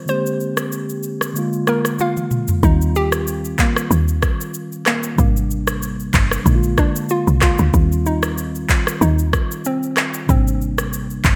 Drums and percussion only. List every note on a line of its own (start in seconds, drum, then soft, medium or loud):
0.08 shaker medium
0.26 shaker medium
0.40 shaker medium
0.57 cross-stick medium
0.57 shaker medium
0.72 shaker medium
0.89 shaker medium
1.03 shaker medium
1.21 cross-stick medium
1.21 shaker loud
1.36 shaker medium
1.53 shaker medium
1.67 cross-stick medium
1.67 shaker medium
1.85 cross-stick medium
1.85 shaker medium
1.99 high tom soft
1.99 shaker medium
2.17 mid tom medium
2.17 shaker medium
2.31 mid tom medium
2.31 shaker medium
2.48 floor tom medium
2.48 shaker medium
2.63 kick loud
2.63 shaker medium
2.81 shaker medium
2.96 shaker medium
3.12 cross-stick medium
3.12 shaker medium
3.27 shaker medium
3.45 shaker medium
3.58 kick medium
3.58 clap medium
3.58 shaker medium
3.76 cross-stick loud
3.76 shaker loud
3.91 shaker medium
4.08 shaker medium
4.22 kick medium
4.22 cross-stick loud
4.22 shaker medium
4.41 shaker medium
4.54 shaker medium
4.72 shaker medium
4.86 cross-stick medium
4.86 clap medium
4.86 shaker medium
5.03 shaker medium
5.18 kick loud
5.18 shaker medium
5.37 shaker medium
5.51 shaker medium
5.67 cross-stick medium
5.67 shaker medium
5.82 shaker medium
6.00 shaker medium
6.13 kick medium
6.13 clap medium
6.13 shaker medium
6.31 cross-stick medium
6.31 shaker loud
6.46 kick medium
6.46 shaker medium
6.63 shaker medium
6.78 kick medium
6.78 cross-stick medium
6.78 shaker medium
6.96 shaker medium
7.09 shaker medium
7.27 shaker medium
7.41 kick medium
7.41 cross-stick medium
7.41 clap loud
7.41 shaker medium
7.58 shaker medium
7.74 kick loud
7.74 shaker medium
7.92 shaker medium
8.06 shaker medium
8.23 cross-stick loud
8.23 shaker medium
8.38 shaker medium
8.55 shaker medium
8.69 kick medium
8.69 clap medium
8.69 shaker medium
8.87 cross-stick medium
8.87 shaker loud
9.02 shaker medium
9.19 shaker soft
9.33 kick medium
9.33 cross-stick loud
9.33 shaker medium
9.51 shaker medium
9.65 shaker medium
9.83 shaker medium
9.97 cross-stick medium
9.97 clap medium
9.97 shaker medium
10.14 shaker medium
10.29 kick loud
10.29 shaker medium
10.47 shaker medium
10.61 shaker medium
10.78 cross-stick medium
10.78 shaker medium
10.93 shaker medium
11.10 shaker medium
11.24 kick medium
11.24 clap medium
11.24 shaker medium